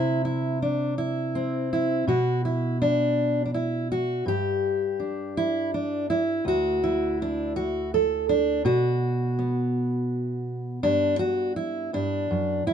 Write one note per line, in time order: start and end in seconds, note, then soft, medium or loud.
0.00 2.03 C3 medium
0.00 0.24 E4 medium
0.25 0.61 E4 medium
0.62 0.98 D4 medium
0.98 1.71 E4 medium
1.35 2.08 C4 medium
1.73 2.08 E4 medium
2.07 4.22 B2 medium
2.07 2.44 F#4 medium
2.45 2.81 E4 medium
2.82 3.44 D4 medium
3.46 3.53 D4 medium
3.54 3.90 E4 medium
3.92 4.27 F#4 medium
4.26 6.40 G2 medium
4.26 5.37 G4 medium
5.00 5.74 D4 soft
5.37 5.73 E4 medium
5.74 6.09 D4 medium
6.10 6.46 E4 medium
6.45 8.64 D2 medium
6.45 7.19 F#4 loud
6.84 7.92 E4 medium
7.22 7.56 D4 medium
7.56 7.92 F#4 medium
7.94 8.29 A4 medium
8.29 8.65 D4 medium
8.65 10.79 B2 medium
8.65 10.83 F#4 medium
9.39 12.73 B3 soft
10.83 11.92 G2 medium
10.83 11.19 D4 medium
11.19 11.56 F#4 medium
11.56 11.93 E4 medium
11.93 12.29 G2 medium
11.93 12.66 D4 medium
12.31 12.66 F#2 medium
12.66 12.73 E2 medium
12.66 12.73 E4 medium